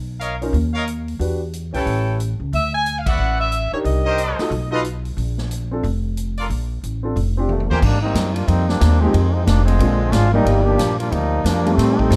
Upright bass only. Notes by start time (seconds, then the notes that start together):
Already playing: B1
0.53 D#2
1.19 E2
1.74 B1
1.86 A1
2.40 C#2
2.53 D2
3.18 A1
3.73 muted upright bass stroke
3.84 C2
4.50 B1
5.17 A#1
5.83 F1
6.49 A#1
6.83 A1
7.16 F1
7.70 D#2
7.82 G#2
8.14 F#2
8.48 F2
8.81 D#2
9.14 F2
9.47 F1
9.79 A#1
10.12 G#1
10.45 G1
10.78 A#1
11.12 D2
11.44 F2
11.77 A2
12.10 G2